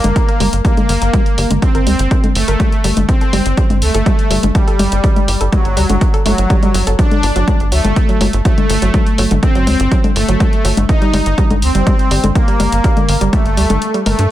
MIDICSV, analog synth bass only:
0, 0, Header, 1, 2, 480
1, 0, Start_track
1, 0, Key_signature, -2, "minor"
1, 0, Tempo, 487805
1, 1117, Time_signature, 4, 2, 24, 8
1, 14082, End_track
2, 0, Start_track
2, 0, Title_t, "Analog synth bass"
2, 0, Program_c, 0, 38
2, 41, Note_on_c, 0, 31, 78
2, 122, Note_off_c, 0, 31, 0
2, 397, Note_on_c, 0, 31, 95
2, 483, Note_off_c, 0, 31, 0
2, 521, Note_on_c, 0, 31, 81
2, 601, Note_off_c, 0, 31, 0
2, 877, Note_on_c, 0, 31, 93
2, 963, Note_off_c, 0, 31, 0
2, 1001, Note_on_c, 0, 31, 79
2, 1081, Note_off_c, 0, 31, 0
2, 1357, Note_on_c, 0, 31, 94
2, 1443, Note_off_c, 0, 31, 0
2, 1481, Note_on_c, 0, 31, 81
2, 1561, Note_off_c, 0, 31, 0
2, 1721, Note_on_c, 0, 31, 74
2, 1838, Note_on_c, 0, 38, 95
2, 1852, Note_off_c, 0, 31, 0
2, 1923, Note_off_c, 0, 38, 0
2, 1962, Note_on_c, 0, 31, 79
2, 2042, Note_off_c, 0, 31, 0
2, 2317, Note_on_c, 0, 31, 94
2, 2403, Note_off_c, 0, 31, 0
2, 2440, Note_on_c, 0, 31, 81
2, 2521, Note_off_c, 0, 31, 0
2, 2796, Note_on_c, 0, 31, 96
2, 2883, Note_off_c, 0, 31, 0
2, 2921, Note_on_c, 0, 31, 82
2, 3001, Note_off_c, 0, 31, 0
2, 3277, Note_on_c, 0, 31, 91
2, 3363, Note_off_c, 0, 31, 0
2, 3401, Note_on_c, 0, 31, 80
2, 3481, Note_off_c, 0, 31, 0
2, 3641, Note_on_c, 0, 31, 76
2, 3757, Note_on_c, 0, 38, 95
2, 3772, Note_off_c, 0, 31, 0
2, 3843, Note_off_c, 0, 38, 0
2, 3881, Note_on_c, 0, 31, 81
2, 3961, Note_off_c, 0, 31, 0
2, 4236, Note_on_c, 0, 31, 94
2, 4323, Note_off_c, 0, 31, 0
2, 4361, Note_on_c, 0, 31, 78
2, 4441, Note_off_c, 0, 31, 0
2, 4716, Note_on_c, 0, 31, 95
2, 4803, Note_off_c, 0, 31, 0
2, 4840, Note_on_c, 0, 31, 82
2, 4921, Note_off_c, 0, 31, 0
2, 5196, Note_on_c, 0, 31, 92
2, 5283, Note_off_c, 0, 31, 0
2, 5320, Note_on_c, 0, 31, 78
2, 5401, Note_off_c, 0, 31, 0
2, 5560, Note_on_c, 0, 31, 78
2, 5676, Note_on_c, 0, 38, 95
2, 5691, Note_off_c, 0, 31, 0
2, 5763, Note_off_c, 0, 38, 0
2, 5800, Note_on_c, 0, 31, 80
2, 5881, Note_off_c, 0, 31, 0
2, 6157, Note_on_c, 0, 31, 92
2, 6243, Note_off_c, 0, 31, 0
2, 6280, Note_on_c, 0, 31, 83
2, 6361, Note_off_c, 0, 31, 0
2, 6636, Note_on_c, 0, 31, 96
2, 6723, Note_off_c, 0, 31, 0
2, 6759, Note_on_c, 0, 31, 81
2, 6841, Note_off_c, 0, 31, 0
2, 7115, Note_on_c, 0, 31, 95
2, 7202, Note_off_c, 0, 31, 0
2, 7239, Note_on_c, 0, 31, 82
2, 7321, Note_off_c, 0, 31, 0
2, 7480, Note_on_c, 0, 31, 76
2, 7595, Note_on_c, 0, 38, 97
2, 7610, Note_off_c, 0, 31, 0
2, 7682, Note_off_c, 0, 38, 0
2, 7719, Note_on_c, 0, 31, 79
2, 7801, Note_off_c, 0, 31, 0
2, 8076, Note_on_c, 0, 31, 95
2, 8162, Note_off_c, 0, 31, 0
2, 8201, Note_on_c, 0, 31, 82
2, 8281, Note_off_c, 0, 31, 0
2, 8556, Note_on_c, 0, 31, 93
2, 8643, Note_off_c, 0, 31, 0
2, 8681, Note_on_c, 0, 31, 81
2, 8761, Note_off_c, 0, 31, 0
2, 9037, Note_on_c, 0, 31, 95
2, 9123, Note_off_c, 0, 31, 0
2, 9161, Note_on_c, 0, 31, 82
2, 9242, Note_off_c, 0, 31, 0
2, 9401, Note_on_c, 0, 31, 76
2, 9517, Note_on_c, 0, 38, 93
2, 9532, Note_off_c, 0, 31, 0
2, 9603, Note_off_c, 0, 38, 0
2, 9641, Note_on_c, 0, 31, 82
2, 9722, Note_off_c, 0, 31, 0
2, 9997, Note_on_c, 0, 31, 94
2, 10083, Note_off_c, 0, 31, 0
2, 10121, Note_on_c, 0, 31, 82
2, 10201, Note_off_c, 0, 31, 0
2, 10476, Note_on_c, 0, 31, 96
2, 10562, Note_off_c, 0, 31, 0
2, 10600, Note_on_c, 0, 31, 81
2, 10681, Note_off_c, 0, 31, 0
2, 10956, Note_on_c, 0, 31, 96
2, 11042, Note_off_c, 0, 31, 0
2, 11080, Note_on_c, 0, 31, 81
2, 11161, Note_off_c, 0, 31, 0
2, 11320, Note_on_c, 0, 31, 77
2, 11437, Note_on_c, 0, 38, 94
2, 11451, Note_off_c, 0, 31, 0
2, 11523, Note_off_c, 0, 38, 0
2, 11560, Note_on_c, 0, 31, 79
2, 11641, Note_off_c, 0, 31, 0
2, 11916, Note_on_c, 0, 31, 96
2, 12002, Note_off_c, 0, 31, 0
2, 12040, Note_on_c, 0, 31, 82
2, 12121, Note_off_c, 0, 31, 0
2, 12397, Note_on_c, 0, 31, 96
2, 12483, Note_off_c, 0, 31, 0
2, 12520, Note_on_c, 0, 31, 82
2, 12601, Note_off_c, 0, 31, 0
2, 12876, Note_on_c, 0, 31, 94
2, 12962, Note_off_c, 0, 31, 0
2, 13000, Note_on_c, 0, 31, 83
2, 13081, Note_off_c, 0, 31, 0
2, 13240, Note_on_c, 0, 31, 77
2, 13356, Note_on_c, 0, 38, 95
2, 13370, Note_off_c, 0, 31, 0
2, 13442, Note_off_c, 0, 38, 0
2, 13480, Note_on_c, 0, 31, 80
2, 13561, Note_off_c, 0, 31, 0
2, 13837, Note_on_c, 0, 31, 96
2, 13923, Note_off_c, 0, 31, 0
2, 13961, Note_on_c, 0, 43, 81
2, 14042, Note_off_c, 0, 43, 0
2, 14082, End_track
0, 0, End_of_file